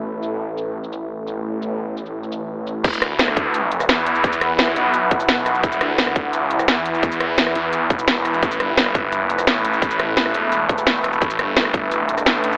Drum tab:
CC |----------------|----------------|x---------------|----------------|
HH |----------------|----------------|x-x-x-x-x-x-x-x-|x-x-x-x-x-x-x-x-|
SH |--x---x--xx---x-|--x---xx-xx---x-|xx--x-x-x-xxx-xx|xx--x-x-x-xxx-xx|
SD |----------------|----------------|--r-or-----ro---|--r-or------o-r-|
BD |----------------|----------------|o-----o---------|o---------o-----|

CC |----------------|----------------|----------------|----------------|
HH |x-x-x-x-x-x-x-x-|x-x-x-x-x-x-x-x-|x-x-x-x-x-x-x-x-|x-x-x-x-x-x-x-x-|
SH |xx--x-x-x-xxx-xx|xx--x-x-x-xxx-xx|xx--x-x-x-xxx-xx|xx--x-x-x-xxx-xx|
SD |--r-or-----ro---|--r-or------o-r-|--r-or-----ro---|--r-or------o-r-|
BD |o-----o---------|o---------o-----|o-----o---------|o---------o-----|

CC |----------------|
HH |x-x-x-x-x-x-x-x-|
SH |xx--x-x-x-xxx-xx|
SD |--r-or-----ro---|
BD |o-----o---------|